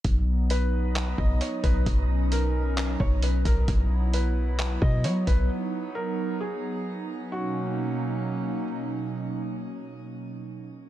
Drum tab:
HH |x-x-x-xx|x-x-x-xx|x-x-x-xx|--------|
CP |----x---|----x---|----x---|--------|
BD |o----o-o|o----o-o|o----o-o|--------|

HH |--------|--------|
CP |--------|--------|
BD |--------|--------|